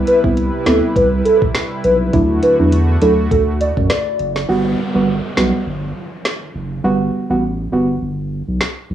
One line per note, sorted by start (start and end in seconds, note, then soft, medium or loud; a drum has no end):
0.00 2.11 C3 medium
0.00 2.11 G3 medium
0.00 0.20 B3 medium
0.00 0.20 C4 medium
0.00 0.20 E4 loud
0.00 4.45 E4 medium
0.00 2.11 B4 medium
0.07 0.20 B4 medium
0.07 closed hi-hat medium
0.24 0.50 C2 loud
0.24 0.36 B3 medium
0.24 0.36 C4 medium
0.24 0.37 E4 medium
0.24 kick medium
0.37 closed hi-hat medium
0.66 0.81 D2 loud
0.66 0.82 B3 medium
0.66 0.82 C4 medium
0.66 0.82 E4 medium
0.66 0.79 A4 medium
0.66 snare loud
0.66 closed hi-hat medium
0.96 1.22 C2 loud
0.96 1.08 B4 medium
0.96 kick loud
0.96 closed hi-hat medium
1.25 1.37 A4 medium
1.25 closed hi-hat medium
1.42 kick loud
1.55 snare loud
1.55 closed hi-hat medium
1.84 2.10 B1 medium
1.84 1.96 B4 medium
1.84 closed hi-hat soft
2.13 2.40 D2 loud
2.13 4.46 D3 medium
2.13 2.55 F#3 medium
2.13 4.47 A3 medium
2.13 2.55 D4 medium
2.13 2.55 E4 loud
2.13 4.46 F#4 medium
2.13 kick loud
2.13 closed hi-hat medium
2.43 2.55 B4 medium
2.43 closed hi-hat medium
2.59 2.97 E2 medium
2.59 2.72 F#3 medium
2.59 2.72 D4 medium
2.59 2.72 E4 medium
2.72 closed hi-hat medium
3.01 3.28 D2 loud
3.01 3.17 F#3 medium
3.01 3.17 D4 medium
3.01 3.18 E4 medium
3.01 3.14 A4 medium
3.01 closed hi-hat medium
3.31 3.72 D2 loud
3.31 3.43 A4 medium
3.31 kick loud
3.31 closed hi-hat medium
3.61 3.73 D5 medium
3.61 closed hi-hat medium
3.77 3.89 F#2 medium
3.77 kick loud
3.90 4.33 D5 medium
3.90 cross-stick loud
3.90 snare loud
3.90 closed hi-hat medium
4.19 4.45 F#1 loud
4.19 closed hi-hat medium
4.36 snare medium
4.49 4.75 G1 loud
4.49 4.91 G3 medium
4.49 4.91 B3 medium
4.49 4.91 F#4 loud
4.49 downlifter medium
4.94 5.21 G1 medium
4.94 5.07 G3 medium
4.94 5.07 B3 medium
4.94 5.07 F#4 medium
5.37 5.52 B1 loud
5.37 5.53 G3 medium
5.37 5.53 B3 medium
5.37 5.53 F#4 medium
5.37 snare loud
5.66 5.93 G1 loud
6.25 snare loud
6.55 6.81 F#1 medium
6.84 7.10 G1 loud
6.84 7.26 G3 medium
6.84 7.26 B3 medium
6.84 7.26 F#4 loud
7.30 7.67 A1 loud
7.30 7.42 G3 medium
7.30 7.42 B3 medium
7.30 7.43 F#4 medium
7.72 7.98 G1 medium
7.72 7.88 G3 medium
7.72 7.88 B3 medium
7.72 7.88 F#4 medium
8.02 8.42 G1 loud
8.48 8.59 B1 loud
8.61 snare loud
8.90 8.94 B1 medium